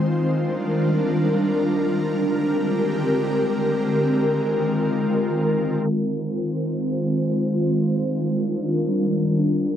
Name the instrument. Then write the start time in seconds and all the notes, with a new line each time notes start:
ambient pad
Already playing: D#3
0.06 G3 D4 F4 A#4
2.00 D3 G#3 C4 G4
3.96 D#3 F4
5.91 D#3 G#3 C4 F4 C5
7.86 G3 D4 A#4